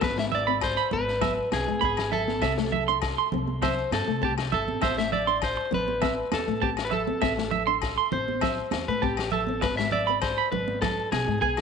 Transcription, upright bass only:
0.03 0.75 G#1 medium
0.92 1.40 G#1 medium
1.52 1.64 B1 medium
1.68 1.79 G#2 medium
1.82 2.42 G#1 medium
2.42 3.14 C2 medium
3.32 3.80 C2 medium
3.91 4.04 G2 medium
4.08 4.19 C3 medium
4.23 4.51 C2 medium
4.52 4.66 G1 medium
4.68 4.82 A1 medium
4.83 5.55 A1 medium
5.72 6.20 A1 medium
6.32 6.45 E2 medium
6.48 6.59 A2 medium
6.62 7.10 A1 medium
7.23 7.95 A1 medium
8.12 8.60 A1 medium
8.72 8.85 E2 medium
8.88 8.99 A2 medium
9.03 9.64 A1 medium
9.63 10.35 G#1 medium
10.52 11.00 G#1 medium
11.12 11.24 B1 medium
11.28 11.39 G#2 medium
11.43 11.61 B1 medium

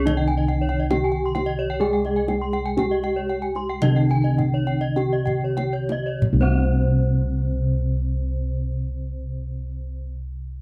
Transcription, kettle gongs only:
0.00 3.81 C2 medium
0.00 0.87 C4 medium
0.91 0.99 C#4 soft
1.80 4.92 G#4 medium
2.77 2.85 C#4 soft
3.82 7.49 C3 medium
4.96 5.04 C#4 soft
6.33 10.01 C2 medium

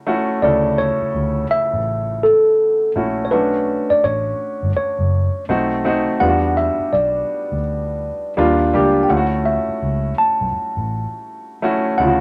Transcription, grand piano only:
0.07 0.40 A3 medium
0.07 0.40 C#4 medium
0.07 0.40 E4 medium
0.07 0.40 F#4 medium
0.43 1.77 C#3 medium
0.43 1.77 A3 medium
0.43 1.77 E4 medium
0.43 1.78 A4 medium
2.96 3.29 A3 medium
2.96 3.29 C#4 medium
2.96 3.29 E4 medium
2.96 3.30 F#4 medium
3.31 4.66 A3 medium
3.31 4.66 C#4 medium
3.31 4.66 D4 medium
3.31 4.67 F#4 medium
5.49 5.82 A3 medium
5.49 5.82 C4 medium
5.49 5.82 D#4 medium
5.49 5.83 F#4 medium
5.84 6.18 A3 medium
5.84 6.18 C4 medium
5.84 6.19 D#4 medium
5.84 6.19 F#4 medium
6.20 7.55 G3 medium
6.20 7.55 B3 medium
6.20 7.55 D4 medium
6.20 6.29 F4 medium
6.28 7.59 F#4 medium
8.37 8.71 G3 medium
8.37 8.71 A#3 medium
8.37 8.71 D4 medium
8.37 8.71 F4 medium
8.74 9.07 G3 medium
8.74 9.07 A#3 medium
8.74 9.07 D4 medium
8.74 9.08 G4 medium
9.09 10.44 A3 medium
9.09 10.44 C#4 medium
9.09 10.44 E4 medium
9.09 9.18 F4 medium
9.17 10.48 F#4 medium
11.62 11.96 A3 medium
11.62 11.96 C#4 medium
11.62 11.97 E4 medium
11.62 11.97 F#4 medium
11.99 12.21 C#3 medium
11.99 12.21 A3 medium
11.99 12.21 E4 medium
11.99 12.08 F4 medium
12.07 12.21 F#4 medium

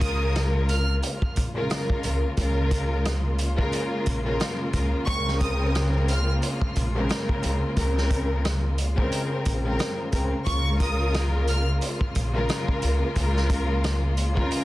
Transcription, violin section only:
0.02 0.32 D#6 medium
0.70 0.87 F6 medium
5.07 5.37 C#6 loud
5.41 5.71 D#6 medium
6.09 6.27 F6 medium
10.46 10.77 C#6 loud
10.81 11.11 D#6 medium
11.48 11.66 F6 medium

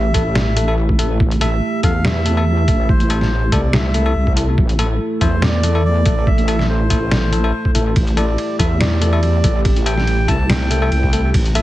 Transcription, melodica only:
0.00 0.73 E5 medium
1.41 1.80 E5 loud
1.84 2.05 F5 loud
2.04 2.92 E5 loud
2.89 3.54 C5 medium
3.52 3.74 D5 medium
3.73 4.33 E5 medium
5.21 5.43 C5 medium
5.42 5.84 D5 loud
5.85 6.29 D5 loud
6.27 6.66 E5 loud
6.70 7.71 C5 medium
8.17 8.56 D5 loud
8.59 8.79 E5 loud
8.80 9.61 D5 medium
9.86 10.30 G5 loud
10.28 10.50 A5 loud
10.49 11.30 G5 loud
11.55 11.62 E5 loud

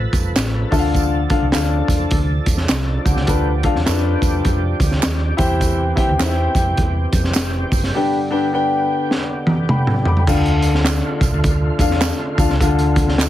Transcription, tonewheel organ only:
0.00 5.35 F3 medium
0.00 3.01 A4 medium
0.00 0.70 B4 medium
0.73 5.35 D4 medium
3.05 10.23 G4 medium
5.38 7.92 E3 medium
5.38 7.92 C4 medium
7.93 10.24 D3 medium
7.93 10.24 B3 medium
10.28 13.29 D3 medium
10.28 13.29 A3 medium
10.28 13.29 F4 medium

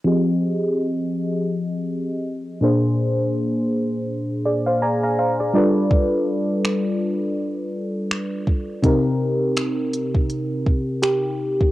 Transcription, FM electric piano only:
0.05 2.57 F3 medium
0.05 2.58 C4 medium
0.05 2.58 G4 medium
0.05 2.58 G#4 medium
0.05 2.59 D#5 medium
2.61 5.50 A#2 medium
2.61 5.50 A#3 medium
2.61 5.51 D4 medium
2.61 4.42 G#4 medium
2.61 4.42 C5 medium
4.45 4.65 G#4 soft
4.45 4.65 D5 medium
4.66 4.81 C5 medium
4.66 4.81 F5 medium
4.82 5.02 D5 medium
4.82 5.02 G#5 medium
4.82 5.02 A#5 medium
5.03 5.18 F5 medium
5.03 5.18 A#5 medium
5.19 5.39 C5 medium
5.19 5.39 F5 medium
5.40 5.75 G#4 soft
5.40 5.54 D5 medium
5.54 8.43 G3 medium
5.54 8.43 D4 medium
5.54 8.44 F4 medium
5.54 8.44 A4 medium
5.54 8.44 B4 medium
5.54 5.89 D5 medium
8.82 11.72 C3 medium
8.82 11.72 C4 medium
8.82 11.72 D#4 medium
8.82 11.01 G4 medium
8.82 11.72 A#4 medium
11.02 11.72 G4 medium

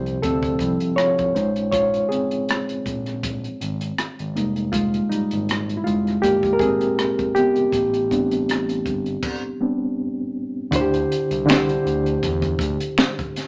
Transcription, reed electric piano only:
0.00 1.32 C3 soft
0.00 0.60 F3 soft
0.00 0.60 G3 soft
0.00 0.24 C4 medium
0.00 0.62 E4 medium
0.00 1.37 G4 medium
0.00 0.25 C5 medium
0.22 0.60 C4 medium
0.22 0.94 A4 medium
0.61 0.94 F3 soft
0.61 0.94 G3 soft
0.61 0.95 C4 soft
0.61 0.95 E4 medium
0.96 1.69 F4 medium
0.96 1.70 C#5 medium
1.35 4.31 G#3 medium
1.35 4.31 C#4 soft
1.35 4.32 D#4 medium
1.35 4.31 C5 soft
1.71 2.08 F4 medium
1.71 2.11 C#5 medium
2.09 4.32 C4 medium
2.09 4.30 G#4 medium
4.35 4.86 G3 medium
4.35 4.72 G#3 soft
4.35 4.87 A#3 soft
4.35 4.87 D#4 medium
4.72 5.08 G#3 medium
4.72 5.11 F4 medium
5.09 5.75 G3 medium
5.09 5.80 D#4 medium
5.77 5.84 E4 medium
5.84 6.21 G#3 medium
5.84 6.23 F4 medium
6.22 6.52 A#3 medium
6.22 6.54 G4 loud
6.53 6.60 A#4 medium
6.60 7.32 C4 medium
6.60 7.37 G#4 loud
7.35 8.10 B3 medium
7.35 9.94 G4 medium
8.11 9.19 G3 soft
8.11 9.19 B3 soft
8.11 9.19 C4 soft
8.11 9.20 D4 medium
9.61 9.94 G3 soft
9.61 9.94 B3 soft
9.61 9.94 C4 soft
9.61 9.95 D4 soft
10.71 11.42 D3 medium
10.71 11.43 D4 medium
10.71 11.43 E4 medium
10.71 10.81 F#4 medium
10.76 11.45 C5 medium
10.81 11.47 G4 medium
11.46 12.88 D3 medium
11.46 12.88 D4 medium
11.46 12.89 E4 medium
11.46 12.89 G4 medium
11.50 12.90 C5 loud

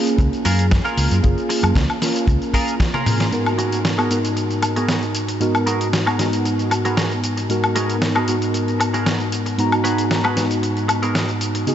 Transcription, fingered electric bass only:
0.18 0.28 C#2 loud
0.45 0.78 F#2 loud
0.97 1.07 C#2 medium
1.11 1.19 F#2 medium
1.24 1.33 F#1 loud
1.63 1.71 F#2 medium
1.76 1.85 C#2 medium
2.27 2.37 C#2 medium

